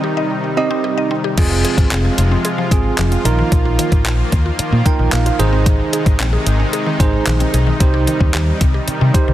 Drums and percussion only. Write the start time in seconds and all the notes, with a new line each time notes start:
1.38 kick, closed hi-hat, crash
1.65 closed hi-hat
1.78 kick, closed hi-hat
1.91 clap, closed hi-hat
2.18 closed hi-hat
2.45 closed hi-hat
2.71 kick, closed hi-hat
2.98 clap, closed hi-hat
3.12 closed hi-hat
3.25 closed hi-hat
3.52 kick, closed hi-hat
3.79 closed hi-hat
3.92 kick, closed hi-hat
4.06 clap, closed hi-hat
4.32 kick, closed hi-hat
4.59 closed hi-hat
4.86 kick, closed hi-hat
5.12 clap, closed hi-hat
5.26 closed hi-hat
5.40 closed hi-hat
5.66 kick, closed hi-hat
5.93 closed hi-hat
6.06 kick, closed hi-hat
6.20 clap, closed hi-hat
6.46 closed hi-hat
6.73 closed hi-hat
7.00 kick, closed hi-hat
7.27 clap, closed hi-hat
7.40 closed hi-hat
7.54 closed hi-hat
7.80 kick, closed hi-hat
8.07 closed hi-hat
8.20 kick
8.34 clap, closed hi-hat
8.61 kick, closed hi-hat
8.88 closed hi-hat
9.14 kick, closed hi-hat